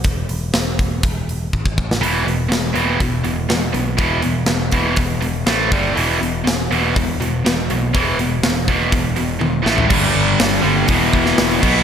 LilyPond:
<<
  \new Staff \with { instrumentName = "Distorted electric guitar" } { \clef bass \time 4/4 \key e \minor \tempo 4 = 122 r1 | r1 | r1 | r1 |
r1 | <g, d g>2 <e, b, e>4. <b, fis b>8 | }
  \new Staff \with { instrumentName = "Distorted electric guitar" } { \clef bass \time 4/4 \key e \minor r1 | <e, b, e>8 <e, b,>8 <e, b,>8 <e, b, e>8 <e, b,>8 <e, b,>8 <e, b,>8 <e, b,>8 | <e, b, e>8 <e, b,>8 <e, b,>8 <e, b, e>8 <e, b,>8 <e, b,>8 <a, e a>8 <g, d g>8 | <e, b, e>8 <e, b,>8 <e, b,>8 <e, b, e>8 <e, b,>8 <e, b,>8 <e, b,>8 <e, b,>8 |
<e, b, e>8 <e, b,>8 <e, b,>8 <e, b, e>8 <e, b,>8 <e, b,>8 <e, b,>8 <a, e a>8 | <g, d g>4. <g, d g>8 <e, b, e>4. <b, fis b>8 | }
  \new Staff \with { instrumentName = "Picked electric bass" } { \clef bass \time 4/4 \key e \minor e,,8 e,,8 e,,8 e,,8 e,,4 gis,,8 a,,8 | e,,8 e,,8 e,,8 e,,8 e,,4 e,,8 b,,8 | e,,8 e,,8 e,,8 e,,8 e,,4 a,,8 g,,8 | e,,8 e,,8 e,,8 e,,8 e,,4 e,,8 b,,8 |
e,,8 e,,8 e,,8 e,,8 e,,4 e,,8 a,,8 | g,,8 g,,8 g,,8 g,,8 e,,8 e,,8 e,,8 b,,8 | }
  \new DrumStaff \with { instrumentName = "Drums" } \drummode { \time 4/4 <hho bd>8 hho8 <hho sn>8 <hho bd>8 <hho bd>8 hho8 bd16 bd16 bd16 sn16 | hho8 hho8 <hho sn>8 hho8 <hho bd>8 hho8 <hho sn>8 hho8 | <hho bd>8 hho8 <hho sn>8 <hho bd>8 <hho bd>8 hho8 <hho sn>8 <hho bd>8 | hho8 hho8 <hho sn>8 hho8 <hho bd>8 hho8 <hho sn>8 hho8 |
<hho bd>8 hho8 <hho sn>8 <hho bd>8 <hho bd>8 hho8 tommh8 sn16 tomfh16 | <cymc bd>4 <hho sn>4 <hho bd>8 bd16 sn16 <hho sn>8 <cymc bd>8 | }
>>